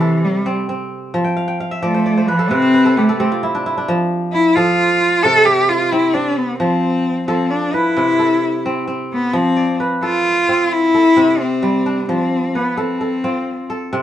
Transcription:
Already playing: kora C3 B4, cello E3
0.01 kora A4
0.25 cello G3
0.46 kora C4
0.69 kora C4
1.14 kora F3
1.24 kora G5
1.37 kora F5
1.48 kora G5
1.60 kora F5
1.71 kora E5
1.82 kora F3 D5, cello A3
1.94 kora C5
2.06 kora D5
2.17 kora C5
2.28 cello F3, kora B4
2.39 kora A4
2.51 kora C3 B4, cello C4
2.62 kora C5
2.74 kora B4
2.85 kora A4
2.97 cello A3, kora G4
3.09 kora A4
3.20 kora C4 G4
3.32 kora F4
3.43 kora E4
3.55 kora D4
3.66 kora E4
3.78 kora D4
3.88 kora F3
4.33 cello E4
4.56 kora F3 A4, cello F4
5.23 kora C3, cello A4
5.45 cello G4, kora A4
5.69 cello F4
5.92 kora C4, cello E4
6.14 kora C4, cello D4
6.38 cello B3
6.59 kora F3, cello C4
7.28 kora F3 A4, cello C4
7.50 cello D4
7.74 cello E4, kora B4
7.97 kora C3
8.19 kora A4
8.66 kora C4
8.88 kora C4
9.13 cello B3
9.33 kora F3, cello C4
9.56 kora D5
9.80 kora B4
10.03 cello F4, kora A4
10.49 kora C4 F4
10.73 cello E4
10.95 kora A4
11.17 kora C3 C4
11.41 cello C4
11.62 kora G3
11.86 kora D4
12.09 kora F3, cello C4
12.55 cello B3, kora B4
12.77 cello C4, kora A4
13.01 kora A4
13.24 kora C4 F4
13.70 kora A4
13.93 kora C3 C4

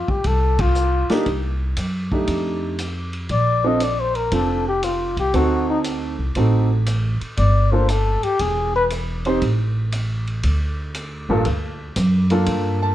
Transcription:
Already playing: trumpet F4
0.08 trumpet G4, muted upright bass stroke, kick
0.24 upright bass C2, trumpet A4, kick, ride
0.59 trumpet F4, kick, ride
0.75 hi-hat pedal
1.09 grand piano A#3 D4 D#4 G4, muted upright bass stroke, snare, ride
1.26 upright bass C2, kick, ride
1.77 upright bass F#2, hi-hat pedal, ride
2.12 grand piano A3 D4 D#4 G4, kick
2.27 upright bass F2, kick, ride
2.79 hi-hat pedal, ride
3.13 ride
3.29 upright bass A#1, trumpet D5, kick, ride
3.64 grand piano C4 D4 F4 A4, trumpet D#5
3.80 trumpet D5, hi-hat pedal, ride
4.00 trumpet C5
4.15 trumpet A#4, ride
4.32 upright bass F1, grand piano C4 D4 F4 A4, trumpet A4, kick, ride
4.68 trumpet G4
4.83 trumpet F4, hi-hat pedal, ride
5.17 upright bass C2, trumpet G4, ride
5.34 upright bass D2, grand piano C4 D#4 F#4 A4, trumpet F#4, kick, ride
5.70 trumpet D#4
5.84 hi-hat pedal, ride
6.19 upright bass C2
6.35 upright bass A1, grand piano C4 D#4 F#4 A4, kick, ride
6.86 hi-hat pedal, ride
7.21 muted upright bass stroke, ride
7.37 upright bass G1, trumpet D5, kick, ride
7.72 grand piano A#3 D4 F4 A4, trumpet C5
7.89 trumpet A4, hi-hat pedal, ride
8.23 trumpet G4, muted upright bass stroke, ride
8.39 upright bass E1, trumpet G#4, kick, ride
8.76 trumpet B4
8.90 hi-hat pedal, ride
9.25 grand piano C4 D#4 G4 C5, ride
9.42 upright bass A1, kick, ride
9.92 hi-hat pedal, ride
10.27 ride
10.43 upright bass D2, kick, ride
10.95 hi-hat pedal, ride
11.29 upright bass A1, grand piano G2 A#3 D4 F4 A4
11.45 upright bass D2, kick, ride
11.96 upright bass F#2, kick, hi-hat pedal, ride
12.30 grand piano A#3 D4 F4 A4, ride
12.46 upright bass G2, kick, ride
12.83 grand piano A5

